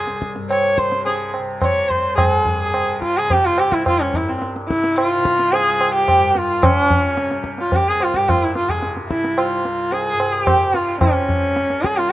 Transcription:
Already playing: C2 G2 C3 G#4
0.07 tabla te
0.22 tabla ke
0.36 G2, tabla te
0.50 C#5, tabla na
0.77 C5, tabla ke
0.88 C3, tabla te
1.05 G#4, tabla tin
1.34 tabla na
1.38 C3
1.61 C#5, tabla na, tabla ge
1.88 C2 C5, tabla ge
2.16 G2 G#4, tabla na, tabla ge
2.46 tabla ge
2.70 C3
2.74 tabla na
3.02 F4, tabla ke
3.17 C3 G#4
3.30 G4, tabla tin, tabla ge
3.45 F4
3.58 G4, tabla na
3.70 C2 E4, tabla ke
3.86 F4, tabla na, tabla ge
4.01 C#4
4.14 E4, tabla ge
4.19 G2
4.29 C4
4.42 tabla te
4.56 tabla te
4.69 C3 E4, tabla ke
4.84 tabla te
4.96 F4, tabla na
5.18 C3
5.25 tabla ke
5.39 tabla te
5.53 G#4, tabla tin
5.67 C2
5.81 tabla na
5.95 G4
6.08 tabla na, tabla ge
6.17 G2
6.30 G4
6.35 F4, tabla te
6.63 C3 C#4, tabla na, tabla ge
6.91 tabla ge
7.17 C3, tabla te
7.31 tabla te
7.44 tabla ke
7.58 F4, tabla te
7.66 C2
7.72 G4, tabla tin, tabla ge
7.89 G#4
8.00 F4, tabla na
8.14 G2 G4, tabla ke
8.29 F4, tabla na, tabla ge
8.43 E4
8.55 F4, tabla te
8.65 C3, tabla ge
8.69 G#4
8.83 tabla te
8.97 tabla te
9.09 E4, tabla ke
9.15 C3
9.24 tabla te
9.38 F4, tabla na
9.64 C2, tabla te
9.92 G#4, tabla tin
10.13 G2
10.20 tabla na
10.33 G4
10.47 tabla na, tabla ge
10.63 C3
10.74 F4, tabla te
11.01 C#4, tabla na, tabla ge
11.13 C3
11.29 tabla ge
11.56 tabla te
11.62 C2
11.70 tabla te
11.83 G#4, tabla ke
11.97 F4, tabla te

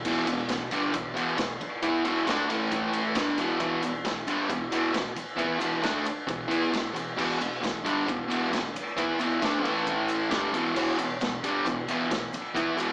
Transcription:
0.05 E2 B2 E3, kick, crash, shaker
0.27 E2 B2, ride, shaker
0.39 shaker
0.49 E2 B2, kick, snare, ride, shaker
0.71 G2 D3 G3, ride, shaker
0.82 shaker
0.93 E2 B2, kick, ride, shaker
1.14 E2 B2 E3, ride, shaker
1.28 shaker
1.37 E2 B2, kick, snare, ride, shaker
1.60 muted distorted electric guitar stroke, ride
1.82 E3 B3 E4, kick, ride, shaker
1.94 shaker
2.05 E2 B2 E3, ride, shaker
2.17 shaker
2.27 D3 A3 D4, kick, snare, ride, shaker
2.49 A2 E3 A3, ride, shaker
2.72 kick, ride, shaker
2.93 ride, shaker
3.04 shaker
3.15 G2 D3 G3, kick, snare, ride, shaker
3.27 shaker
3.38 E2 B2 E3, ride, shaker
3.49 shaker
3.60 E2 B2 E3, kick, ride, shaker
3.82 E2 B2, ride, shaker
4.05 E2 B2, kick, snare, ride, shaker
4.27 G2 D3 G3, ride, shaker
4.49 E2 B2, kick, ride, shaker
4.71 E2 B2 E3, ride, shaker
4.84 shaker
4.93 E2 B2, kick, snare, ride, shaker
5.16 muted distorted electric guitar stroke, ride, shaker
5.28 shaker
5.37 E3 B3 E4, kick, ride, shaker
5.59 E2 B2 E3, ride, shaker
5.71 shaker
5.82 D3 A3 D4, kick, snare, ride, shaker
6.05 muted distorted electric guitar stroke, ride, shaker
6.27 E2 B2, kick, ride, shaker
6.48 E3 B3 E4, ride, shaker
6.62 shaker
6.71 E2 B2, kick, ride, shaker
6.76 snare
6.94 E2 B2, ride, shaker
7.17 E2 B2 E3, kick, crash, shaker
7.39 E2 B2, ride, shaker
7.52 shaker
7.61 E2 B2, kick, ride, shaker
7.65 snare
7.84 G2 D3 G3, ride, shaker
8.07 E2 B2, kick, ride, shaker
8.28 E2 B2 E3, ride, shaker
8.42 shaker
8.52 E2 B2, kick, snare, ride, shaker
8.74 muted distorted electric guitar stroke, ride, shaker
8.97 E3 B3 E4, kick, ride, shaker
9.19 E2 B2 E3, ride, shaker
9.31 shaker
9.41 D3 A3 D4, kick, snare, ride, shaker
9.63 A2 E3 A3, ride
9.76 shaker
9.86 kick, ride, shaker
10.08 ride, shaker
10.29 G2 D3 G3, kick, snare, ride, shaker
10.53 E2 B2 E3, ride, shaker
10.66 shaker
10.75 E2 B2 E3, kick, crash, shaker
10.99 E2 B2, ride, shaker
11.20 E2 B2, kick, snare, ride, shaker
11.43 G2 D3 G3, ride, shaker
11.66 E2 B2, kick, ride, shaker
11.88 E2 B2 E3, ride, shaker
12.00 shaker
12.11 E2 B2, kick, snare, ride, shaker
12.33 muted distorted electric guitar stroke, ride, shaker
12.45 shaker
12.54 E3 B3 E4, kick, ride, shaker
12.77 E2 B2 E3, ride, shaker

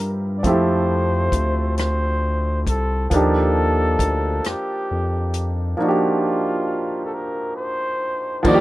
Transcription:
Already playing: G2 G3 C4 E4 F4 G4 A#4
0.00 closed hi-hat
0.38 D5
0.43 F2 F3 A3 C4 E4 C5, kick, closed hi-hat
0.48 G4
1.32 D2, kick, closed hi-hat
1.78 C5, cross-stick, closed hi-hat
2.67 C2 A4, kick, closed hi-hat
3.10 D#2 F3 A#3 D4 D#4, kick, closed hi-hat
3.14 G4 A4
3.99 D2, kick, closed hi-hat
4.44 F2 G4, cross-stick, closed hi-hat
4.91 F2
5.34 closed hi-hat
5.77 F3 A#3 D4 D#4 F4
5.82 F#4
5.88 G4
7.05 A4
7.14 A#4
7.57 C5
8.43 D#2 F3 G3 A#3 D#4 F4, kick, crash
8.48 F#4 D5
8.54 G4

